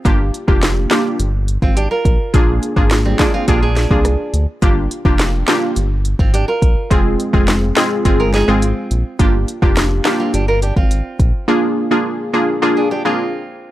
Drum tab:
HH |x-x-x-x-x-x-x-x-|x-x-x-x-x-x-x-x-|x-x-x-x-x-x-x-x-|x-x-x-x-x-x-x-x-|
CP |----x-x---------|----x-x---------|----x-x---------|----x-x---------|
SD |----o-o---------|----o-o---o-r---|----o-o---------|----o-o---o-----|
BD |o--o-------o--o-|o--o--o-o--o----|o--o-------o--o-|o--o----o-------|

HH |x-x-x-x-x-x-x-x-|----------------|
CP |----x-x---------|----------------|
SD |----o-o---------|----------------|
BD |o--o-------o--o-|----------------|